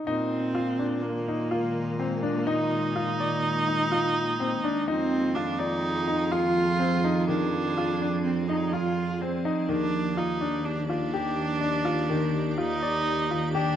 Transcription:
0.06 A#2 D#3 G#3 A#3 C4 D#4
0.55 F4
0.79 D4
1.02 A#3
1.28 D#4
1.51 F4
1.99 A#3 C4
2.23 D4
2.47 D#4
2.96 F4
3.20 D5
3.68 D#4
3.92 F4
4.40 C4
4.64 D4
4.87 F2 F3 C4 D#4 G#4
5.35 D4 F4
5.59 D#4 D5
6.08 D#4
6.32 F4
6.80 C4
7.04 D#4
7.29 D#3 D4 D5
7.78 F4
8.02 D4
8.24 C4
8.48 D#4
8.72 F4
9.22 C4
9.45 D#4
9.69 D#2 D#3 D4 G4
10.17 D#4 F4
10.41 D4
10.65 D4
10.88 D4 F4
11.14 G4
11.61 D4
11.85 F4
12.10 D#3
12.51 D4
12.58 D#4 F4
12.82 D5
13.31 F4
13.54 D4 G4

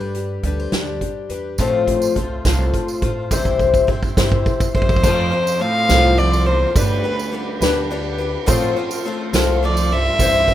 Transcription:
Already playing: G2 G3 D4 G4 B4
0.00 B4
0.15 G4, closed hi-hat
0.43 D2 G3 D4 G4 A4 B4, kick, closed hi-hat
0.59 C5
0.72 D2 G3 D4 G4, snare, closed hi-hat
1.01 G4, kick, closed hi-hat
1.29 E2 D4 G4 B4, closed hi-hat
1.58 A1 A2 F3 A3 C4 F4 A4 C5 F5 C6, kick, closed hi-hat, tambourine
1.87 kick, closed hi-hat
2.02 tambourine
2.15 C2 A3 C4 F4 C5, kick, closed hi-hat
2.44 C2 A2 F3 A3 C4 F4 C5, kick, snare, closed hi-hat, tambourine
2.73 kick, closed hi-hat, tambourine
2.88 tambourine
3.02 A2 A3 C4 F4 C5, kick, closed hi-hat
3.31 C2 C3 E3 G3 C4 E4 G4 C5 E5, kick, tambourine
3.45 kick, tambourine
3.59 kick, tambourine
3.74 kick, tambourine
3.87 G2 G3 C4 E4 C5, kick
4.03 kick, tambourine
4.16 G2 C3 E3 G3 C4 E4 C5, kick, snare, tambourine
4.32 kick
4.46 kick, tambourine
4.60 kick, tambourine
4.74 C2 F2 G3 C4 E4 C5, kick
4.82 kick
4.89 kick, tambourine
4.96 kick
5.02 F1 F2 F3 A3 C4 F4 A4 C5 F5 C6, kick, crash, tambourine
5.31 C4 F4 C5, ride
5.47 tambourine
5.59 A2 A3 C4 F4 C5 F5, ride
5.89 C2 F3 A3 C4 F4 A4 C5, snare, ride, tambourine
6.17 F2 A3 C4 F4 C5 D5, ride
6.33 tambourine
6.46 E2 C4 F4 C5, ride
6.74 G1 D2 G2 G3 B3 D4 G4 B4 D5 B5, kick, ride, tambourine
7.04 D4 G4 B4, ride
7.19 tambourine
7.32 G3 D4 G4 B4, ride
7.61 D2 G3 B3 D4 G4 B4 D5, snare, ride, tambourine
7.91 G3 D4 G4 B4, ride
8.18 D4 G4 B4, ride
8.46 A1 A2 F3 A3 C4 F4 A4 C5 F5 C6, kick, ride, tambourine
8.76 A3 C4 F4 C5, ride
8.91 tambourine
9.05 A3 C4 F4 C5, ride
9.33 C2 A2 F3 A3 C4 F4 A4 C5, snare, ride, tambourine
9.62 F2 A3 C4 F4 C5 D5, ride
9.77 tambourine
9.91 G2 A3 C4 F4 C5 E5, ride
10.19 C2 C3 E3 G3 C4 E4 G4 C5 E5, kick, ride, tambourine
10.48 C4 E4 C5, kick, ride, tambourine

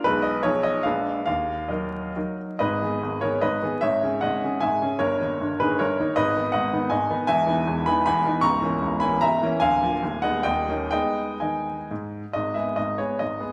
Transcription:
0.04 B1 G#3 D#4 G#4 B4
0.22 D#5
0.43 B1 F3 D#4 G#4 C#5
0.63 D#5
0.83 A#1 G#3 D4 B4 F5
1.26 D#2 F5
1.68 F#3 D#4 A#4 D#5
2.16 F#3 D#4 A#4
2.59 G#1 G#2 B4 D#5
2.81 D#3 B3 G#4
3.02 G#1 G#2
3.21 D#3 B3 G#4 A#4 C#5
3.41 G#1 G#2 B4 D#5
3.62 D#3 B3 G#4
3.81 G#1 G#2 C#5 E5
4.03 C#3 C#4 G#4
4.21 G#1 G#2 D#5 F#5
4.44 C#3 C#4 G#4
4.60 G#1 G#2 E5 G#5
4.82 C#3 C#4 G#4
4.99 G1 G2 A#4 C#5
5.21 D#3 A#3 D#4
5.41 G1 G2
5.60 D#3 A#3 D#4 G#4 B4
5.79 G1 G2 A#4 C#5
6.00 D#3 A#3 D#4
6.16 G#1 G#2 B4 D#5
6.36 D#3 B3 D#4
6.52 G#1 G#2 D#5 F#5
6.73 D#3 B3 D#4
6.90 G#1 G#2 D#5 G#5
7.10 D#3 B3 D#4
7.27 E1 E2 E5 G#5
7.46 E3 B3 D#4
7.67 E1 E2
7.86 E3 B3 D#4 G#5 B5
8.06 E1 E2 G#5 B5
8.26 E3 B3 D#4
8.41 C#1 C#2 A#5 C#6
8.62 E3 A#3 C#4
8.81 C#1 C#2
9.00 E3 A#3 C#4 G#5 B5
9.21 C#1 C#2 E5 A#5
9.43 E3 A#3 C#4
9.60 D1 D2 F5 G#5
9.82 F3 A#3 F4
10.03 D#1 D#2
10.22 G#3 B3 D#4 D#5 F#5
10.43 D#1 D#2 D#5 G5
10.69 A#3 C#4 D#4
10.91 G#3 B3 D#4 D#5 G5
11.40 D#3 D#5 G#5
11.91 G#2
12.33 G#1 G#2 D#5
12.54 G#3 B3 G#4 E5
12.76 G#1 G#2 D#5
12.98 G#3 B3 G#4 C#5
13.19 G#1 G#2 D#5
13.40 G#3 B3 G#4

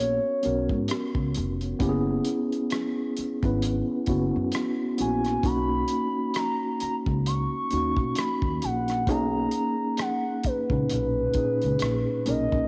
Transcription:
Already playing: A#1 B3 C#4 F#4 A#4 C#5
0.43 B1 B3 C#4 F#4 A#4, closed hi-hat
0.69 G#2, kick
0.88 cross-stick, closed hi-hat
1.15 C#2, kick
1.34 F1, closed hi-hat
1.61 closed hi-hat
1.79 F#1 B3 C#4 E4 G4, kick, closed hi-hat
1.89 G#4
2.25 closed hi-hat
2.52 closed hi-hat
2.70 cross-stick, closed hi-hat
3.17 muted upright bass stroke, closed hi-hat
3.43 G#1 B3 C#4 E4 B4, kick, closed hi-hat
3.62 closed hi-hat
4.06 F#1 B3 C#4 E4 F#4, kick, closed hi-hat
4.36 F#2
4.52 cross-stick, closed hi-hat
4.98 A#1 B3 C#4 E4 F#4 G#5, closed hi-hat
5.25 cross-stick, closed hi-hat
5.43 B1 A#3 C#4 D#4 F#4 B5, kick, closed hi-hat
5.88 closed hi-hat
6.34 A#5, cross-stick, closed hi-hat
6.80 A#5, muted upright bass stroke, closed hi-hat
7.06 C#2, kick
7.26 C#6, closed hi-hat
7.70 D#2 A#3 C#4 D#4 F#4, closed hi-hat
7.97 B2, kick
8.15 B5, cross-stick, closed hi-hat
8.42 D#2, kick
8.62 A#1 F#5, closed hi-hat
8.88 cross-stick, closed hi-hat
9.07 B1 A#3 C#4 D#4 G#4 A#5, kick, closed hi-hat
9.51 closed hi-hat
9.97 F#5, cross-stick, closed hi-hat
10.44 B4, muted upright bass stroke, kick, closed hi-hat
10.70 C#2 A#2 C#4 D#4 B4, kick
10.90 B1, closed hi-hat
11.34 A#2 C#4 D#4 G#4, kick, closed hi-hat
11.62 C#2, closed hi-hat
11.79 A#1, cross-stick, closed hi-hat
12.25 B1 A#3 C#4 D#4 A#4 D#5, closed hi-hat
12.52 B1, kick

